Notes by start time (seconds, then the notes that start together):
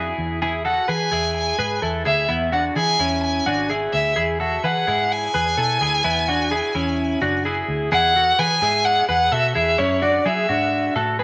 Already playing: F2 E4 G#4
0.18 E2
0.42 E4 G#4
0.65 F#4 A4 F#5
0.88 E3 G#4 B4 G#5
1.12 E2 E4 G#4
1.37 G#5
1.58 G#2 G#4 B4
1.82 E2 E4 A4
2.05 D2 E4 G#4 E5
2.29 E2 B3 E4
2.52 D4 F#4 F#5
2.76 E3 E4 G#4 G#5
2.99 E2 C#4 E4
3.23 G#5
3.46 G#1 D4 F#4
3.70 E4 G#4
3.93 D2 E5
4.16 E2 E4 G#4
4.40 F#4 A4 E5
4.64 E3 G#4 B4 F#5
4.87 G#2 E4 G#4
5.12 G#5
5.34 E2 G#4 B4
5.58 B2 E4 A4
5.81 D2 E4 G#4
6.04 E2 B3 E4
6.28 D4 F#4
6.51 E4 G#4
6.75 E2 C#4 E4
7.22 F#1 D4 F#4
7.45 E4 G#4
7.68 D2
7.92 E2 E4 G#4 F#5
8.16 F#4 A4
8.39 E3 G#4 B4 G#5
8.62 G#2 E4 G#4
8.85 F#5
9.09 E2 G#4 B4 F#5
9.32 B2 F#4 A4 E5
9.55 E2 E4 G#4 E5
9.78 F#2 C#4 E4 C#5
10.02 D4 F#4 D5
10.26 F#3 E4 G#4 E5
10.49 G#2 D4 F#4
10.96 A2 F#4 A4
11.19 G#4 B4